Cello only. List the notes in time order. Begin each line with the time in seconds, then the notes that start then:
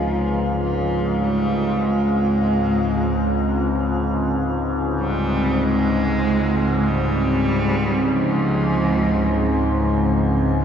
Already playing: F3
0.61 F3
1.24 G3
1.85 G#3
5.01 G3
5.63 G#3
6.88 G3
8.13 F3